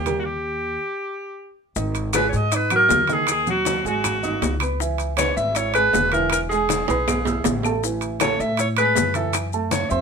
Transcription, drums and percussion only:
0.06 high bongo, high conga, high timbale, maracas
1.76 high bongo, high conga, maracas
1.95 high conga, high timbale, maracas
2.13 high bongo, high conga, high timbale, low timbale, claves, maracas
2.33 high bongo, high conga, maracas
2.52 high bongo, high conga, high timbale, maracas
2.70 high bongo, high conga, high timbale, claves, maracas
2.89 high bongo, low bongo, high conga, low timbale, maracas
3.07 high bongo, high conga, high timbale, maracas
3.27 high bongo, high conga, high timbale, claves, maracas
3.47 high bongo, high conga, maracas
3.65 high bongo, high conga, high timbale, low timbale, maracas
3.85 high bongo, high conga, maracas
4.04 high bongo, high conga, low conga, high timbale, claves, maracas
4.23 high bongo, high conga, low conga, maracas
4.42 high bongo, low bongo, high conga, high timbale, low timbale, maracas
4.60 high conga, high timbale, claves, maracas
4.80 high bongo, high conga, maracas
4.98 high conga, high timbale, maracas
5.17 high bongo, high conga, high timbale, low timbale, claves, maracas
5.37 high bongo, high conga, maracas
5.55 high bongo, high conga, high timbale, maracas
5.74 high bongo, high conga, high timbale, claves, maracas
5.93 high bongo, low bongo, high conga, low timbale, maracas
6.12 high bongo, high conga, high timbale, maracas
6.30 high bongo, high conga, high timbale, claves, maracas
6.51 high bongo, high conga, maracas
6.69 high bongo, high conga, high timbale, low timbale, maracas
6.88 high bongo, high conga, high timbale, maracas
7.07 high bongo, high conga, low conga, low timbale, claves, maracas
7.25 high bongo, high conga, low conga, low timbale, maracas
7.44 high bongo, low bongo, high conga, low timbale, maracas
7.63 high conga, low timbale, claves, maracas
7.83 high bongo, high conga, maracas
8.01 high conga, high timbale, maracas
8.20 high bongo, high conga, high timbale, low timbale, claves, maracas
8.39 high bongo, high conga, maracas
8.57 high bongo, high conga, high timbale, maracas
8.77 high bongo, high conga, high timbale, claves, maracas
8.95 high bongo, low bongo, high conga, low timbale, maracas
9.14 high bongo, high conga, high timbale, maracas
9.33 high bongo, high conga, high timbale, claves, maracas
9.53 high bongo, high conga, maracas
9.71 high bongo, high conga, high timbale, low timbale, maracas
9.90 high bongo, high conga, maracas

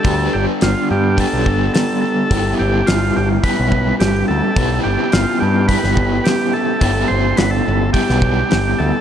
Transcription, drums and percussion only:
0.04 kick, open hi-hat
0.61 snare, open hi-hat
1.18 kick, open hi-hat
1.46 kick
1.74 snare, open hi-hat
2.31 kick, open hi-hat
2.87 snare, open hi-hat
3.44 kick, open hi-hat
3.72 kick
4.00 snare, open hi-hat
4.56 kick, open hi-hat
5.12 snare, open hi-hat
5.69 kick, open hi-hat
5.84 snare
5.97 kick
6.25 snare, open hi-hat
6.81 kick, open hi-hat
7.37 snare, open hi-hat
7.94 kick, open hi-hat
8.09 snare
8.22 kick
8.51 snare, open hi-hat

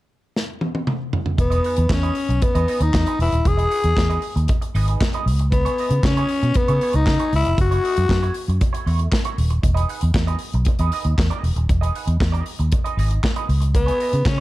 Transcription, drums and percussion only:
0.36 snare
0.61 high tom
0.75 high tom
0.87 mid tom
1.13 floor tom
1.26 floor tom
1.38 kick, closed hi-hat
1.52 closed hi-hat
1.64 open hi-hat
1.76 closed hi-hat
1.90 kick, snare, clap
2.03 closed hi-hat
2.15 open hi-hat
2.30 closed hi-hat
2.42 kick, closed hi-hat
2.55 closed hi-hat
2.68 open hi-hat
2.80 closed hi-hat
2.94 kick, snare, clap
3.07 closed hi-hat
3.20 open hi-hat
3.32 closed hi-hat
3.45 kick, closed hi-hat
3.59 closed hi-hat
3.71 open hi-hat
3.84 closed hi-hat
3.97 kick, snare, clap
4.10 closed hi-hat
4.22 open hi-hat
4.37 closed hi-hat
4.48 kick, closed hi-hat
4.62 closed hi-hat
4.75 open hi-hat
4.88 closed hi-hat
5.01 kick, snare, clap
5.13 closed hi-hat
5.28 open hi-hat
5.39 closed hi-hat
5.52 kick, closed hi-hat
5.66 closed hi-hat
5.78 open hi-hat
5.91 closed hi-hat
6.03 kick, snare, clap
6.17 closed hi-hat
6.29 open hi-hat
6.43 closed hi-hat
6.54 kick, closed hi-hat
6.68 closed hi-hat
6.81 open hi-hat
6.93 closed hi-hat
7.07 kick, snare, clap
7.19 closed hi-hat
7.33 open hi-hat
7.45 closed hi-hat
7.58 kick, closed hi-hat
7.72 closed hi-hat
7.85 open hi-hat
7.97 closed hi-hat
8.09 kick, snare, clap
8.23 closed hi-hat
8.34 open hi-hat
8.50 closed hi-hat
8.61 kick, closed hi-hat
8.74 closed hi-hat
8.87 open hi-hat
8.99 closed hi-hat
9.12 kick, snare, clap
9.25 closed hi-hat
9.38 open hi-hat
9.50 closed hi-hat
9.63 kick, closed hi-hat
9.77 closed hi-hat
9.89 open hi-hat
10.01 closed hi-hat
10.14 kick, snare, clap
10.28 closed hi-hat
10.39 open hi-hat
10.53 closed hi-hat
10.65 kick, closed hi-hat
10.79 closed hi-hat
10.92 open hi-hat
11.04 closed hi-hat
11.18 kick, snare, clap
11.31 closed hi-hat
11.44 open hi-hat
11.56 closed hi-hat
11.69 kick, closed hi-hat
11.83 closed hi-hat
11.95 open hi-hat
12.08 closed hi-hat
12.20 kick, snare, clap
12.35 closed hi-hat
12.46 open hi-hat
12.60 closed hi-hat
12.72 kick, closed hi-hat
12.86 closed hi-hat
12.99 open hi-hat
13.11 closed hi-hat
13.24 kick, snare, clap
13.36 closed hi-hat
13.49 open hi-hat
13.62 closed hi-hat
13.75 kick, closed hi-hat
13.88 closed hi-hat
14.00 open hi-hat
14.13 closed hi-hat
14.26 kick, snare, clap

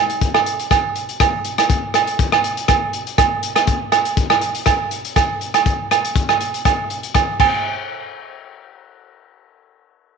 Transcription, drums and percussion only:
0.10 closed hi-hat
0.21 kick, closed hi-hat
0.34 cross-stick, low agogo
0.46 closed hi-hat
0.59 closed hi-hat
0.71 kick, cross-stick, closed hi-hat, low agogo
0.95 closed hi-hat
1.09 closed hi-hat
1.20 kick, cross-stick, closed hi-hat, low agogo
1.45 closed hi-hat
1.58 cross-stick, closed hi-hat, low agogo
1.70 kick, closed hi-hat
1.94 cross-stick, closed hi-hat, low agogo
2.07 closed hi-hat
2.19 kick, closed hi-hat
2.32 cross-stick, low agogo
2.44 closed hi-hat
2.57 closed hi-hat
2.68 kick, cross-stick, closed hi-hat, low agogo
2.93 closed hi-hat
3.07 closed hi-hat
3.18 kick, cross-stick, closed hi-hat, low agogo
3.43 closed hi-hat
3.56 cross-stick, closed hi-hat, low agogo
3.67 kick, closed hi-hat
3.92 cross-stick, closed hi-hat, low agogo
4.05 closed hi-hat
4.17 kick, closed hi-hat
4.30 cross-stick, low agogo
4.41 closed hi-hat
4.55 closed hi-hat
4.66 kick, cross-stick, closed hi-hat, low agogo
4.91 closed hi-hat
5.05 closed hi-hat
5.16 kick, cross-stick, closed hi-hat, low agogo
5.41 closed hi-hat
5.54 cross-stick, closed hi-hat, low agogo
5.66 kick, closed hi-hat
5.91 cross-stick, closed hi-hat, low agogo
6.05 closed hi-hat
6.16 kick, closed hi-hat
6.29 cross-stick, low agogo
6.41 closed hi-hat
6.54 closed hi-hat
6.65 kick, cross-stick, closed hi-hat, low agogo
6.90 closed hi-hat
7.03 closed hi-hat
7.14 kick, cross-stick, closed hi-hat, low agogo
7.40 kick, crash, low agogo

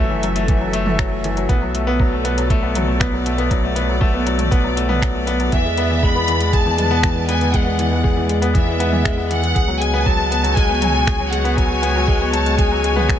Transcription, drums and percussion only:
0.23 closed hi-hat
0.36 closed hi-hat
0.48 kick, closed hi-hat
0.73 closed hi-hat
0.86 mid tom
0.99 finger snap, kick, closed hi-hat
1.24 closed hi-hat
1.37 closed hi-hat
1.49 kick, closed hi-hat
1.75 closed hi-hat
2.00 kick
2.25 closed hi-hat
2.38 closed hi-hat
2.50 kick, closed hi-hat
2.75 closed hi-hat, mid tom
3.00 finger snap, kick, closed hi-hat
3.26 closed hi-hat
3.38 closed hi-hat
3.51 kick, closed hi-hat
3.76 closed hi-hat
4.01 kick
4.27 closed hi-hat
4.39 closed hi-hat, mid tom
4.52 kick, closed hi-hat
4.77 closed hi-hat
4.90 mid tom
5.02 finger snap, kick, closed hi-hat
5.27 closed hi-hat
5.40 closed hi-hat
5.52 kick, closed hi-hat
5.78 closed hi-hat
6.03 kick
6.28 closed hi-hat
6.40 closed hi-hat
6.53 kick, closed hi-hat
6.78 closed hi-hat, mid tom
7.03 finger snap, kick, closed hi-hat
7.29 closed hi-hat
7.41 closed hi-hat
7.54 kick, closed hi-hat
7.79 closed hi-hat
8.04 kick
8.29 closed hi-hat
8.42 closed hi-hat
8.55 kick, closed hi-hat
8.80 closed hi-hat
8.93 mid tom
9.05 finger snap, kick, closed hi-hat
9.31 closed hi-hat
9.44 closed hi-hat
9.56 kick, closed hi-hat
9.82 closed hi-hat
10.06 kick
10.32 closed hi-hat
10.44 closed hi-hat
10.57 kick, closed hi-hat
10.82 closed hi-hat, mid tom
11.07 finger snap, kick, closed hi-hat
11.33 closed hi-hat
11.45 closed hi-hat
11.57 kick, closed hi-hat
11.83 closed hi-hat
12.08 kick
12.33 closed hi-hat
12.46 closed hi-hat
12.58 kick, closed hi-hat
12.84 closed hi-hat
12.97 mid tom
13.09 finger snap, kick, closed hi-hat

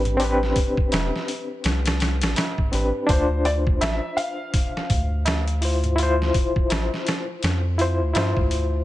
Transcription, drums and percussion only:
0.05 closed hi-hat, tabla ge
0.20 open hi-hat
0.43 snare
0.56 kick, open hi-hat
0.77 kick
0.92 snare, open hi-hat, tabla na
1.16 snare
1.28 open hi-hat
1.64 snare, open hi-hat
1.86 snare, open hi-hat
2.00 snare, open hi-hat
2.22 snare, open hi-hat
2.36 snare, open hi-hat, tabla na
2.58 kick, tabla ge
2.73 open hi-hat
3.09 kick, open hi-hat
3.45 open hi-hat
3.67 kick
3.81 snare, open hi-hat, tabla na
4.18 open hi-hat
4.54 kick, open hi-hat
4.77 snare
4.89 kick, open hi-hat, tabla ge
5.25 snare, open hi-hat, tabla na
5.48 closed hi-hat
5.62 open hi-hat
5.84 closed hi-hat, tabla ge
5.98 open hi-hat
6.22 snare
6.34 kick, open hi-hat
6.56 kick
6.70 snare, open hi-hat, tabla na
6.94 snare
7.07 snare, open hi-hat
7.43 snare, open hi-hat
7.79 open hi-hat
8.15 snare, open hi-hat, tabla na
8.37 kick, tabla ge
8.51 open hi-hat

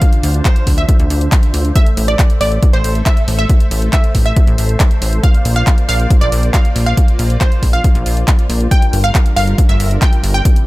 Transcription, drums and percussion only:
0.02 kick, closed hi-hat
0.13 closed hi-hat
0.23 open hi-hat
0.34 closed hi-hat
0.45 kick, clap, closed hi-hat
0.56 closed hi-hat
0.67 kick, open hi-hat
0.78 closed hi-hat
0.89 kick, closed hi-hat
1.00 closed hi-hat
1.10 open hi-hat
1.21 closed hi-hat
1.32 kick, clap, closed hi-hat
1.43 closed hi-hat
1.54 open hi-hat
1.65 closed hi-hat
1.76 kick, closed hi-hat
1.86 closed hi-hat
1.97 open hi-hat
2.08 closed hi-hat
2.19 kick, clap, closed hi-hat
2.30 closed hi-hat
2.41 open hi-hat
2.52 closed hi-hat
2.63 kick, closed hi-hat
2.73 closed hi-hat
2.84 open hi-hat
2.95 closed hi-hat
3.06 kick, clap, closed hi-hat
3.17 closed hi-hat
3.28 open hi-hat
3.39 closed hi-hat
3.49 kick, closed hi-hat
3.60 closed hi-hat
3.71 open hi-hat
3.82 closed hi-hat
3.93 kick, clap, closed hi-hat
4.04 closed hi-hat
4.15 kick, open hi-hat
4.26 closed hi-hat
4.36 kick, closed hi-hat
4.47 closed hi-hat
4.58 open hi-hat
4.69 closed hi-hat
4.80 kick, clap, closed hi-hat
4.91 closed hi-hat
5.02 open hi-hat
5.13 closed hi-hat
5.23 kick, closed hi-hat
5.34 closed hi-hat
5.45 open hi-hat
5.56 closed hi-hat
5.67 kick, clap, closed hi-hat
5.78 closed hi-hat
5.89 open hi-hat
6.00 closed hi-hat
6.10 kick, closed hi-hat
6.21 closed hi-hat
6.32 open hi-hat
6.43 closed hi-hat
6.54 kick, clap, closed hi-hat
6.65 closed hi-hat
6.76 open hi-hat
6.87 closed hi-hat
6.97 kick, closed hi-hat
7.08 closed hi-hat
7.19 open hi-hat
7.30 closed hi-hat
7.41 kick, clap, closed hi-hat
7.52 closed hi-hat
7.63 kick, open hi-hat
7.73 closed hi-hat
7.84 kick, closed hi-hat
7.95 closed hi-hat
8.06 open hi-hat
8.17 closed hi-hat
8.28 kick, clap, closed hi-hat
8.39 closed hi-hat
8.50 open hi-hat
8.61 closed hi-hat
8.71 kick, closed hi-hat
8.82 closed hi-hat
8.93 open hi-hat
9.04 closed hi-hat
9.15 kick, clap, closed hi-hat
9.26 closed hi-hat
9.37 open hi-hat
9.47 closed hi-hat
9.58 kick, closed hi-hat
9.69 closed hi-hat
9.80 open hi-hat
9.91 closed hi-hat
10.02 kick, clap, closed hi-hat
10.13 closed hi-hat
10.24 open hi-hat
10.34 closed hi-hat
10.45 kick, closed hi-hat
10.56 closed hi-hat

